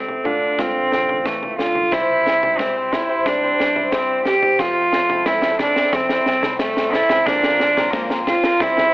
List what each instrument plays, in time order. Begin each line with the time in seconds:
Already playing: steel-string acoustic guitar C3 F3 A3, cello C4
0.08 floor tom
0.24 fingered electric bass D2, steel-string acoustic guitar D3 F4, cello D4, floor tom
0.59 cello C4, steel-string acoustic guitar F4, kick, snare, floor tom, mid tom
0.92 fingered electric bass A1, steel-string acoustic guitar F4, snare
1.09 floor tom
1.24 steel-string acoustic guitar E3, cello A3, kick, snare
1.43 floor tom
1.58 fingered electric bass D2, steel-string acoustic guitar D3, cello F4, snare
1.75 fingered electric bass C2, floor tom
1.91 fingered electric bass C2, twelve-string acoustic guitar C3 E3 G3 C4 E4 C5, cello E4, kick, snare, floor tom
2.26 twelve-string acoustic guitar C4 E4 C5, snare
2.42 twelve-string acoustic guitar G3 C4 E4 C5, floor tom
2.58 twelve-string acoustic guitar C3 E3 G3 C4 E4 C5, cello C4, kick, snare, mid tom
2.76 twelve-string acoustic guitar G3 C4 E4 C5
2.93 cello E4, snare, floor tom
3.09 twelve-string acoustic guitar G3 C4 E4 C5
3.26 fingered electric bass C2, cello D4, kick, snare, floor tom
3.43 twelve-string acoustic guitar G3 C4 E4 C5
3.58 fingered electric bass G2, twelve-string acoustic guitar G3 C4 E4 C5, snare
3.75 twelve-string acoustic guitar G3 C4 E4 C5, floor tom
3.92 twelve-string acoustic guitar C3 E3 G3 C4 E4 C5, cello C4, kick, snare
4.25 twelve-string acoustic guitar G3 C4 E4 C5, cello G4, snare
4.43 floor tom
4.59 fingered electric bass F2, twelve-string acoustic guitar F3 A3 C4 A4, cello F4, kick, snare, floor tom
4.93 twelve-string acoustic guitar A3 C4 E4 A4, snare
5.09 twelve-string acoustic guitar C4 E4 A4, floor tom
5.26 twelve-string acoustic guitar F3 A3 C4 E4 A4, cello E4, kick, snare, mid tom
5.42 twelve-string acoustic guitar C4 E4 A4, snare
5.59 cello D4, snare, floor tom
5.76 twelve-string acoustic guitar C4 E4 A4, snare
5.93 fingered electric bass F2, cello C4, kick, snare, floor tom
6.09 twelve-string acoustic guitar C4 E4 A4, snare
6.26 fingered electric bass C2, twelve-string acoustic guitar A3 C4 E4 A4, snare
6.43 twelve-string acoustic guitar C4 E4 A4, snare, floor tom
6.59 twelve-string acoustic guitar F3 A3 C4 E4 A4, cello A3, kick, snare
6.77 snare
6.92 twelve-string acoustic guitar A3 C4 E4 A4, cello E4, snare
7.09 twelve-string acoustic guitar C4 E4 A4, snare, floor tom
7.25 fingered electric bass A#1, twelve-string acoustic guitar A#2 D3 A#3 C4 F4 A#4, cello D4, kick, snare, floor tom
7.43 snare
7.60 twelve-string acoustic guitar A#3 C4 F4 A#4, snare
7.77 twelve-string acoustic guitar A#3 C4 F4 A#4, snare, floor tom
7.92 twelve-string acoustic guitar A#2 D3 A#3 C4 F4 A#4, cello A#3, kick, snare, mid tom
8.10 twelve-string acoustic guitar A#3 C4 F4 A#4, snare
8.27 cello F4, snare, floor tom
8.44 twelve-string acoustic guitar A#3 C4 F4 A#4, snare
8.60 fingered electric bass C2, twelve-string acoustic guitar C3 E3 G3 C4 E4 C5, cello E4, kick, snare, floor tom
8.77 twelve-string acoustic guitar G3 C4 E4 C5, snare